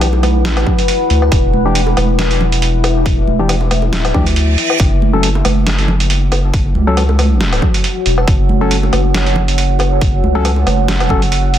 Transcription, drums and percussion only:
0.01 closed hi-hat, low woodblock
0.13 high bongo
0.23 closed hi-hat, high conga, low woodblock
0.45 snare, closed hi-hat
0.57 closed hi-hat, low woodblock
0.67 kick, low conga
0.79 closed hi-hat
0.88 closed hi-hat
1.10 closed hi-hat
1.22 low woodblock
1.32 kick, closed hi-hat
1.53 high conga
1.75 closed hi-hat
1.87 high bongo
1.97 closed hi-hat, high conga, low woodblock
2.19 snare, closed hi-hat
2.31 closed hi-hat
2.41 low conga
2.52 closed hi-hat
2.62 closed hi-hat
2.84 closed hi-hat, high bongo, low woodblock
3.06 kick, closed hi-hat
3.27 high conga
3.49 closed hi-hat, low woodblock
3.61 high bongo
3.71 closed hi-hat, high conga, low woodblock
3.82 high bongo
3.93 snare, closed hi-hat
4.05 closed hi-hat, low woodblock
4.14 kick, low conga
4.26 closed hi-hat
4.36 closed hi-hat
4.58 closed hi-hat
4.70 low woodblock
4.80 kick, closed hi-hat
5.02 high conga
5.23 closed hi-hat
5.35 high bongo
5.45 closed hi-hat, high conga, low woodblock
5.67 snare, closed hi-hat
5.79 closed hi-hat
5.88 low conga
6.00 closed hi-hat
6.10 closed hi-hat
6.32 closed hi-hat, high bongo, low woodblock
6.54 kick, closed hi-hat
6.75 high conga
6.97 closed hi-hat, low woodblock
7.09 high bongo
7.19 closed hi-hat, high conga, low woodblock
7.41 snare, closed hi-hat
7.53 closed hi-hat, low woodblock
7.62 kick, low conga
7.74 closed hi-hat
7.84 closed hi-hat
8.06 closed hi-hat
8.18 low woodblock
8.28 kick, closed hi-hat
8.49 high conga
8.71 closed hi-hat
8.83 high bongo
8.93 closed hi-hat, high conga, low woodblock
9.14 snare, closed hi-hat
9.27 closed hi-hat
9.36 low conga
9.48 closed hi-hat
9.58 closed hi-hat
9.79 closed hi-hat, high bongo, low woodblock
10.01 kick, closed hi-hat
10.24 high conga
10.45 closed hi-hat, low woodblock
10.56 high bongo
10.67 closed hi-hat, high conga, low woodblock
10.88 snare, closed hi-hat
11.00 closed hi-hat, low woodblock
11.09 kick, low conga
11.22 closed hi-hat
11.32 closed hi-hat
11.54 closed hi-hat

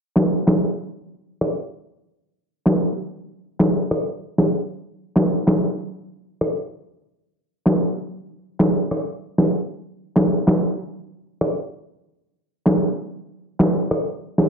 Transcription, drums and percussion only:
0.16 snare, clap
0.47 snare, clap
1.41 cross-stick
2.66 snare, clap
3.60 snare, clap
3.91 cross-stick
4.38 snare
5.16 snare, clap
5.47 snare, clap
6.41 cross-stick
7.66 snare, clap
8.60 snare, clap
8.91 cross-stick
9.38 snare
10.16 snare, clap
10.47 snare, clap
11.41 cross-stick
12.66 snare, clap
13.60 snare, clap
13.91 cross-stick
14.38 snare

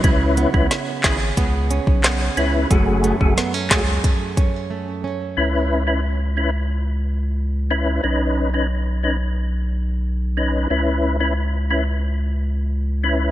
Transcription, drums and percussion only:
0.04 kick, closed hi-hat
0.37 closed hi-hat
0.54 kick
0.71 snare, closed hi-hat
1.04 kick, snare, clap, closed hi-hat
1.37 kick, closed hi-hat
1.71 closed hi-hat
1.87 kick
2.04 cross-stick, snare, clap, closed hi-hat
2.37 closed hi-hat
2.71 kick, closed hi-hat
3.04 closed hi-hat
3.21 kick
3.38 snare, closed hi-hat
3.71 kick, snare, clap, closed hi-hat
4.04 kick, closed hi-hat
4.37 kick, closed hi-hat

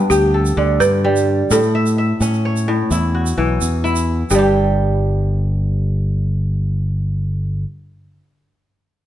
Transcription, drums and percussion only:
0.11 shaker
0.46 shaker
0.81 shaker
1.16 shaker
1.51 shaker
1.63 shaker
1.86 shaker
2.21 shaker
2.34 shaker
2.56 shaker
2.91 shaker
3.26 shaker
3.61 shaker
3.85 shaker
3.96 shaker
4.30 shaker

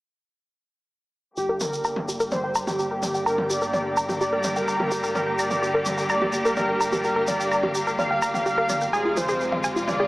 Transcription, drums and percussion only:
1.37 shaker
1.60 mid tom, shaker
1.73 shaker
1.84 shaker
1.96 mid tom
2.09 shaker
2.20 shaker
2.31 mid tom, shaker
2.55 shaker
2.67 mid tom, shaker
2.79 shaker
3.03 mid tom, shaker
3.14 shaker
3.27 shaker
3.38 mid tom
3.50 shaker
3.62 shaker
3.73 mid tom, shaker
3.97 shaker
4.09 mid tom, shaker
4.21 shaker
4.44 mid tom, shaker
4.56 shaker
4.68 shaker
4.80 mid tom
4.92 shaker
5.03 shaker
5.15 mid tom, shaker
5.39 shaker
5.51 mid tom, shaker
5.63 shaker
5.85 mid tom, shaker
5.98 shaker
6.09 shaker
6.21 mid tom
6.33 shaker
6.45 shaker
6.56 mid tom, shaker
6.81 shaker
6.92 mid tom, shaker
7.04 shaker
7.27 mid tom, shaker
7.40 shaker
7.52 shaker
7.63 mid tom
7.75 shaker
7.87 shaker
7.99 mid tom, shaker
8.22 shaker
8.34 mid tom, shaker
8.46 shaker
8.69 mid tom, shaker
8.81 shaker
8.94 shaker
9.17 mid tom, shaker
9.28 shaker
9.40 shaker
9.52 mid tom
9.64 shaker
9.76 shaker
9.88 mid tom, shaker

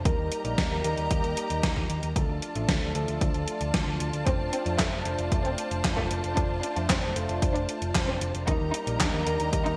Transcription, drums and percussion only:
0.05 kick, closed hi-hat
0.32 closed hi-hat
0.45 closed hi-hat
0.58 kick, snare, closed hi-hat
0.84 closed hi-hat
0.98 closed hi-hat
1.11 kick, closed hi-hat
1.24 closed hi-hat
1.37 closed hi-hat
1.50 closed hi-hat
1.63 kick, snare, closed hi-hat
1.76 kick
1.90 closed hi-hat
2.03 closed hi-hat
2.16 kick, closed hi-hat
2.42 closed hi-hat
2.55 closed hi-hat
2.69 kick, snare, closed hi-hat
2.95 closed hi-hat
3.08 closed hi-hat
3.21 kick, closed hi-hat
3.34 closed hi-hat
3.48 closed hi-hat
3.61 closed hi-hat
3.74 kick, snare, closed hi-hat
4.00 closed hi-hat
4.13 closed hi-hat
4.27 kick, closed hi-hat
4.53 closed hi-hat
4.66 closed hi-hat
4.79 kick, snare, clap, closed hi-hat
5.05 closed hi-hat
5.19 closed hi-hat
5.32 kick, closed hi-hat
5.45 closed hi-hat
5.58 closed hi-hat
5.71 closed hi-hat
5.84 kick, snare, clap, closed hi-hat
5.97 kick
6.11 closed hi-hat
6.24 closed hi-hat
6.37 kick, closed hi-hat
6.63 closed hi-hat
6.76 closed hi-hat
6.90 kick, snare, clap, closed hi-hat
7.16 closed hi-hat
7.29 closed hi-hat
7.42 kick, closed hi-hat
7.55 closed hi-hat
7.69 closed hi-hat
7.82 closed hi-hat
7.95 kick, snare, clap, closed hi-hat
8.21 closed hi-hat
8.35 closed hi-hat
8.47 kick, closed hi-hat
8.74 closed hi-hat
8.87 closed hi-hat
9.00 kick, snare, clap, closed hi-hat
9.27 closed hi-hat
9.40 closed hi-hat
9.53 kick, closed hi-hat
9.66 closed hi-hat

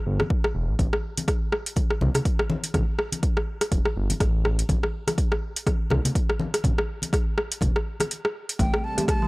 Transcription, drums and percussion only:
0.20 cross-stick, high conga
0.30 kick
0.44 cross-stick
0.79 kick, closed hi-hat, high conga
0.93 cross-stick
1.17 closed hi-hat, high conga
1.28 kick, cross-stick, closed hi-hat
1.52 cross-stick
1.66 closed hi-hat
1.76 kick, closed hi-hat, high conga
1.91 cross-stick
2.01 high conga, low conga
2.15 cross-stick, closed hi-hat, low conga
2.25 kick, closed hi-hat
2.39 cross-stick
2.50 high conga
2.64 closed hi-hat
2.74 kick, cross-stick, closed hi-hat, high conga, low conga
2.99 cross-stick
3.12 closed hi-hat, high conga
3.23 kick, closed hi-hat
3.37 cross-stick
3.61 cross-stick, closed hi-hat
3.72 kick, closed hi-hat, high conga
3.85 cross-stick
4.10 closed hi-hat, high conga
4.20 kick, cross-stick, closed hi-hat
4.45 cross-stick
4.59 closed hi-hat
4.69 kick, closed hi-hat, high conga
4.83 cross-stick
5.07 cross-stick, closed hi-hat, high conga
5.18 kick, closed hi-hat
5.32 cross-stick
5.56 closed hi-hat
5.67 kick, cross-stick, closed hi-hat, high conga
5.90 cross-stick, high conga, low conga
6.05 closed hi-hat, low conga
6.15 kick, closed hi-hat
6.30 cross-stick
6.40 high conga
6.54 cross-stick, closed hi-hat
6.64 kick, closed hi-hat, high conga, low conga
6.78 cross-stick
7.02 closed hi-hat, high conga
7.13 kick, cross-stick, closed hi-hat
7.38 cross-stick
7.52 closed hi-hat
7.61 kick, closed hi-hat, high conga, low conga
7.76 cross-stick
8.00 cross-stick, closed hi-hat, high conga
8.11 closed hi-hat
8.25 cross-stick
8.49 closed hi-hat
8.59 kick, closed hi-hat, high conga
8.74 cross-stick
8.98 closed hi-hat, high conga
9.08 kick, cross-stick, closed hi-hat

